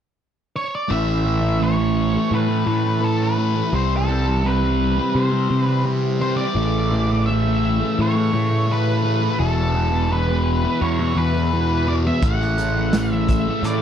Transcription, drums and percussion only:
12.22 kick loud
12.22 closed hi-hat medium
12.41 snare soft
12.58 closed hi-hat medium
12.58 tambourine medium
12.93 snare loud
12.93 closed hi-hat medium
12.93 tambourine medium
13.28 kick medium
13.28 closed hi-hat medium
13.28 tambourine medium
13.64 closed hi-hat medium
13.64 tambourine medium

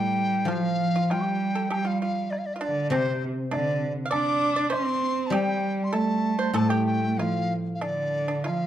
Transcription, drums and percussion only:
0.48 high woodblock soft
1.10 high woodblock soft
1.10 low woodblock soft
1.72 high woodblock medium
2.33 low woodblock soft
2.93 high woodblock medium
3.53 high woodblock soft
3.53 low woodblock soft
4.12 high woodblock medium
4.72 low woodblock soft
5.33 high woodblock medium
5.94 high woodblock soft
5.94 low woodblock soft
6.56 high woodblock medium
7.20 low woodblock soft
7.81 high woodblock soft
8.46 high woodblock soft
8.46 low woodblock soft

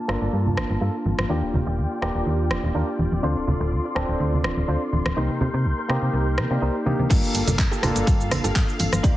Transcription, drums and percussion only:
0.09 cross-stick medium
0.34 tambourine soft
0.46 tambourine soft
0.46 low conga medium
0.57 cross-stick medium
0.57 tambourine medium
0.57 high conga medium
0.70 tambourine soft
1.06 tambourine medium
1.06 high conga medium
1.19 cross-stick medium
1.19 tambourine soft
1.19 high conga medium
1.29 tambourine soft
1.54 tambourine medium
1.54 low conga medium
1.67 tambourine soft
1.78 tambourine medium
1.92 tambourine soft
2.02 cross-stick medium
2.27 tambourine medium
2.40 tambourine soft
2.51 cross-stick medium
2.51 tambourine medium
2.51 high conga medium
2.64 tambourine soft
2.75 tambourine soft
2.99 tambourine medium
2.99 high conga medium
3.12 tambourine soft
3.12 high conga medium
3.23 tambourine soft
3.36 tambourine soft
3.48 tambourine medium
3.48 low conga medium
3.61 tambourine soft
3.72 tambourine medium
3.85 tambourine soft
3.96 cross-stick medium
4.09 tambourine soft
4.21 tambourine medium
4.33 tambourine soft
4.33 low conga medium
4.44 cross-stick medium
4.44 tambourine medium
4.44 high conga medium
4.57 tambourine soft
4.69 tambourine medium
4.81 tambourine soft
4.93 tambourine loud
4.93 high conga medium
5.06 cross-stick medium
5.06 tambourine soft
5.06 high conga medium
5.41 tambourine medium
5.41 low conga medium
5.54 tambourine soft
5.65 tambourine soft
5.79 tambourine soft
5.90 cross-stick medium
6.02 tambourine soft
6.15 tambourine medium
6.38 cross-stick medium
6.38 tambourine medium
6.38 high conga medium
6.51 tambourine soft
6.61 tambourine soft
6.74 tambourine soft
6.86 tambourine medium
6.86 high conga medium
6.99 tambourine soft
6.99 high conga medium
7.10 kick loud
7.10 closed hi-hat medium
7.10 crash loud
7.10 tambourine medium
7.10 shaker medium
7.24 tambourine soft
7.24 shaker soft
7.35 open hi-hat loud
7.35 tambourine medium
7.47 closed hi-hat medium
7.47 tambourine soft
7.47 low conga medium
7.47 shaker medium
7.59 kick loud
7.59 clap loud
7.59 closed hi-hat medium
7.59 shaker medium
7.71 tambourine soft
7.71 shaker soft
7.83 cross-stick medium
7.83 open hi-hat loud
7.83 tambourine medium
7.83 low conga medium
7.96 closed hi-hat medium
7.96 tambourine soft
7.96 shaker medium
8.07 kick loud
8.07 closed hi-hat medium
8.07 tambourine medium
8.07 shaker medium
8.20 tambourine soft
8.20 shaker soft
8.31 cross-stick medium
8.31 open hi-hat loud
8.31 tambourine loud
8.31 high conga medium
8.31 low conga loud
8.44 closed hi-hat soft
8.44 tambourine soft
8.44 shaker medium
8.55 kick loud
8.55 clap loud
8.55 closed hi-hat medium
8.55 tambourine medium
8.55 shaker soft
8.68 tambourine soft
8.68 shaker soft
8.79 open hi-hat loud
8.79 tambourine medium
8.79 high conga medium
8.93 cross-stick medium
8.93 closed hi-hat medium
8.93 tambourine soft
8.93 high conga medium
8.93 shaker medium
9.04 kick loud
9.04 closed hi-hat medium
9.04 tambourine soft
9.04 shaker medium

